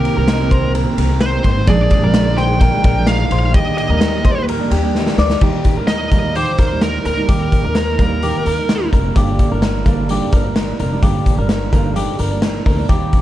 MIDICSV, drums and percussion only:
0, 0, Header, 1, 2, 480
1, 0, Start_track
1, 0, Key_signature, -3, "major"
1, 0, Tempo, 467290
1, 1722, Time_signature, 4, 2, 24, 8
1, 13576, End_track
2, 0, Start_track
2, 0, Title_t, "Drums"
2, 50, Note_on_c, 9, 51, 57
2, 153, Note_off_c, 9, 51, 0
2, 284, Note_on_c, 9, 38, 118
2, 288, Note_on_c, 9, 51, 76
2, 387, Note_off_c, 9, 38, 0
2, 391, Note_off_c, 9, 51, 0
2, 526, Note_on_c, 9, 36, 98
2, 535, Note_on_c, 9, 51, 61
2, 629, Note_off_c, 9, 36, 0
2, 637, Note_off_c, 9, 51, 0
2, 768, Note_on_c, 9, 51, 75
2, 871, Note_off_c, 9, 51, 0
2, 1006, Note_on_c, 9, 51, 75
2, 1109, Note_off_c, 9, 51, 0
2, 1238, Note_on_c, 9, 38, 120
2, 1240, Note_on_c, 9, 51, 69
2, 1341, Note_off_c, 9, 38, 0
2, 1343, Note_off_c, 9, 51, 0
2, 1483, Note_on_c, 9, 36, 82
2, 1484, Note_on_c, 9, 51, 61
2, 1585, Note_off_c, 9, 36, 0
2, 1587, Note_off_c, 9, 51, 0
2, 1717, Note_on_c, 9, 51, 77
2, 1721, Note_on_c, 9, 36, 117
2, 1820, Note_off_c, 9, 51, 0
2, 1823, Note_off_c, 9, 36, 0
2, 1955, Note_on_c, 9, 51, 59
2, 1962, Note_on_c, 9, 36, 96
2, 2057, Note_off_c, 9, 51, 0
2, 2065, Note_off_c, 9, 36, 0
2, 2196, Note_on_c, 9, 38, 111
2, 2200, Note_on_c, 9, 51, 71
2, 2298, Note_off_c, 9, 38, 0
2, 2303, Note_off_c, 9, 51, 0
2, 2439, Note_on_c, 9, 38, 38
2, 2444, Note_on_c, 9, 51, 59
2, 2542, Note_off_c, 9, 38, 0
2, 2547, Note_off_c, 9, 51, 0
2, 2678, Note_on_c, 9, 36, 85
2, 2679, Note_on_c, 9, 51, 77
2, 2781, Note_off_c, 9, 36, 0
2, 2782, Note_off_c, 9, 51, 0
2, 2916, Note_on_c, 9, 51, 73
2, 2921, Note_on_c, 9, 36, 97
2, 3019, Note_off_c, 9, 51, 0
2, 3024, Note_off_c, 9, 36, 0
2, 3150, Note_on_c, 9, 38, 118
2, 3152, Note_on_c, 9, 51, 67
2, 3252, Note_off_c, 9, 38, 0
2, 3254, Note_off_c, 9, 51, 0
2, 3398, Note_on_c, 9, 51, 63
2, 3500, Note_off_c, 9, 51, 0
2, 3638, Note_on_c, 9, 51, 77
2, 3639, Note_on_c, 9, 36, 115
2, 3741, Note_off_c, 9, 51, 0
2, 3742, Note_off_c, 9, 36, 0
2, 3882, Note_on_c, 9, 51, 57
2, 3984, Note_off_c, 9, 51, 0
2, 4118, Note_on_c, 9, 38, 113
2, 4122, Note_on_c, 9, 51, 76
2, 4221, Note_off_c, 9, 38, 0
2, 4225, Note_off_c, 9, 51, 0
2, 4362, Note_on_c, 9, 36, 94
2, 4367, Note_on_c, 9, 51, 62
2, 4465, Note_off_c, 9, 36, 0
2, 4469, Note_off_c, 9, 51, 0
2, 4606, Note_on_c, 9, 51, 79
2, 4709, Note_off_c, 9, 51, 0
2, 4841, Note_on_c, 9, 51, 70
2, 4943, Note_off_c, 9, 51, 0
2, 5084, Note_on_c, 9, 38, 57
2, 5187, Note_off_c, 9, 38, 0
2, 5204, Note_on_c, 9, 38, 68
2, 5306, Note_off_c, 9, 38, 0
2, 5322, Note_on_c, 9, 38, 89
2, 5425, Note_off_c, 9, 38, 0
2, 5441, Note_on_c, 9, 38, 92
2, 5544, Note_off_c, 9, 38, 0
2, 5557, Note_on_c, 9, 49, 80
2, 5562, Note_on_c, 9, 36, 95
2, 5660, Note_off_c, 9, 49, 0
2, 5665, Note_off_c, 9, 36, 0
2, 5796, Note_on_c, 9, 42, 65
2, 5803, Note_on_c, 9, 36, 84
2, 5899, Note_off_c, 9, 42, 0
2, 5906, Note_off_c, 9, 36, 0
2, 6035, Note_on_c, 9, 38, 106
2, 6039, Note_on_c, 9, 42, 76
2, 6137, Note_off_c, 9, 38, 0
2, 6142, Note_off_c, 9, 42, 0
2, 6278, Note_on_c, 9, 38, 35
2, 6282, Note_on_c, 9, 36, 83
2, 6283, Note_on_c, 9, 42, 63
2, 6380, Note_off_c, 9, 38, 0
2, 6385, Note_off_c, 9, 36, 0
2, 6386, Note_off_c, 9, 42, 0
2, 6527, Note_on_c, 9, 42, 80
2, 6629, Note_off_c, 9, 42, 0
2, 6760, Note_on_c, 9, 42, 81
2, 6765, Note_on_c, 9, 36, 85
2, 6863, Note_off_c, 9, 42, 0
2, 6868, Note_off_c, 9, 36, 0
2, 7000, Note_on_c, 9, 38, 103
2, 7002, Note_on_c, 9, 42, 74
2, 7102, Note_off_c, 9, 38, 0
2, 7104, Note_off_c, 9, 42, 0
2, 7245, Note_on_c, 9, 42, 67
2, 7348, Note_off_c, 9, 42, 0
2, 7484, Note_on_c, 9, 42, 85
2, 7485, Note_on_c, 9, 36, 102
2, 7587, Note_off_c, 9, 42, 0
2, 7588, Note_off_c, 9, 36, 0
2, 7725, Note_on_c, 9, 42, 64
2, 7727, Note_on_c, 9, 36, 84
2, 7828, Note_off_c, 9, 42, 0
2, 7830, Note_off_c, 9, 36, 0
2, 7960, Note_on_c, 9, 38, 103
2, 7964, Note_on_c, 9, 42, 76
2, 8063, Note_off_c, 9, 38, 0
2, 8067, Note_off_c, 9, 42, 0
2, 8207, Note_on_c, 9, 36, 88
2, 8210, Note_on_c, 9, 42, 67
2, 8309, Note_off_c, 9, 36, 0
2, 8313, Note_off_c, 9, 42, 0
2, 8449, Note_on_c, 9, 42, 83
2, 8551, Note_off_c, 9, 42, 0
2, 8690, Note_on_c, 9, 42, 78
2, 8792, Note_off_c, 9, 42, 0
2, 8927, Note_on_c, 9, 38, 104
2, 8929, Note_on_c, 9, 42, 74
2, 9030, Note_off_c, 9, 38, 0
2, 9032, Note_off_c, 9, 42, 0
2, 9170, Note_on_c, 9, 36, 77
2, 9173, Note_on_c, 9, 42, 72
2, 9273, Note_off_c, 9, 36, 0
2, 9276, Note_off_c, 9, 42, 0
2, 9407, Note_on_c, 9, 42, 89
2, 9408, Note_on_c, 9, 36, 100
2, 9510, Note_off_c, 9, 36, 0
2, 9510, Note_off_c, 9, 42, 0
2, 9645, Note_on_c, 9, 42, 66
2, 9648, Note_on_c, 9, 36, 86
2, 9748, Note_off_c, 9, 42, 0
2, 9751, Note_off_c, 9, 36, 0
2, 9883, Note_on_c, 9, 38, 101
2, 9887, Note_on_c, 9, 42, 79
2, 9985, Note_off_c, 9, 38, 0
2, 9989, Note_off_c, 9, 42, 0
2, 10127, Note_on_c, 9, 36, 87
2, 10128, Note_on_c, 9, 42, 68
2, 10230, Note_off_c, 9, 36, 0
2, 10231, Note_off_c, 9, 42, 0
2, 10366, Note_on_c, 9, 42, 87
2, 10469, Note_off_c, 9, 42, 0
2, 10604, Note_on_c, 9, 42, 77
2, 10608, Note_on_c, 9, 36, 86
2, 10707, Note_off_c, 9, 42, 0
2, 10711, Note_off_c, 9, 36, 0
2, 10844, Note_on_c, 9, 38, 104
2, 10846, Note_on_c, 9, 42, 76
2, 10947, Note_off_c, 9, 38, 0
2, 10949, Note_off_c, 9, 42, 0
2, 11088, Note_on_c, 9, 42, 68
2, 11191, Note_off_c, 9, 42, 0
2, 11326, Note_on_c, 9, 36, 96
2, 11326, Note_on_c, 9, 42, 89
2, 11429, Note_off_c, 9, 36, 0
2, 11429, Note_off_c, 9, 42, 0
2, 11566, Note_on_c, 9, 42, 66
2, 11568, Note_on_c, 9, 36, 82
2, 11669, Note_off_c, 9, 42, 0
2, 11671, Note_off_c, 9, 36, 0
2, 11802, Note_on_c, 9, 38, 106
2, 11806, Note_on_c, 9, 42, 76
2, 11905, Note_off_c, 9, 38, 0
2, 11909, Note_off_c, 9, 42, 0
2, 12046, Note_on_c, 9, 36, 88
2, 12052, Note_on_c, 9, 42, 65
2, 12148, Note_off_c, 9, 36, 0
2, 12155, Note_off_c, 9, 42, 0
2, 12285, Note_on_c, 9, 42, 83
2, 12388, Note_off_c, 9, 42, 0
2, 12518, Note_on_c, 9, 42, 77
2, 12621, Note_off_c, 9, 42, 0
2, 12758, Note_on_c, 9, 38, 108
2, 12760, Note_on_c, 9, 42, 76
2, 12861, Note_off_c, 9, 38, 0
2, 12863, Note_off_c, 9, 42, 0
2, 13002, Note_on_c, 9, 46, 70
2, 13005, Note_on_c, 9, 36, 76
2, 13105, Note_off_c, 9, 46, 0
2, 13108, Note_off_c, 9, 36, 0
2, 13244, Note_on_c, 9, 36, 104
2, 13244, Note_on_c, 9, 42, 87
2, 13346, Note_off_c, 9, 42, 0
2, 13347, Note_off_c, 9, 36, 0
2, 13485, Note_on_c, 9, 42, 62
2, 13488, Note_on_c, 9, 36, 86
2, 13576, Note_off_c, 9, 36, 0
2, 13576, Note_off_c, 9, 42, 0
2, 13576, End_track
0, 0, End_of_file